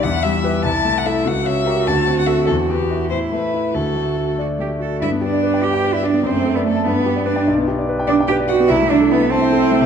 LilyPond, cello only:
\new Staff \with { instrumentName = "Cello" } { \time 6/8 \key g \major \tempo 4. = 98 e'4. e'4. | fis'2.~ | fis'4. e'4. | fis'4. fis'8 g'8 a'8 |
e'8 d'4 g'8. e'16 d'8 | c'8. b16 a8 b4 d'8 | r4. d'8 g'8 fis'8 | e'8 d'8 b8 c'4. | }